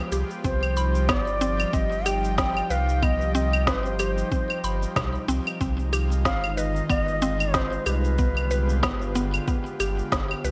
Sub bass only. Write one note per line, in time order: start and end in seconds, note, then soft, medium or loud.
0.12 0.23 C2 medium
0.44 1.10 C2 loud
1.09 1.65 G1 medium
1.73 2.62 G1 medium
2.70 3.68 C2 medium
3.67 4.23 G1 medium
4.63 4.86 G1 medium
4.96 5.18 C2 medium
5.28 5.40 C2 medium
5.61 6.27 C2 medium
6.25 6.81 G1 medium
6.90 7.78 G1 medium
7.86 8.85 C2 medium
8.83 9.39 G1 medium
9.80 10.02 G1 medium
10.12 10.34 G1 medium
10.44 10.51 C2 medium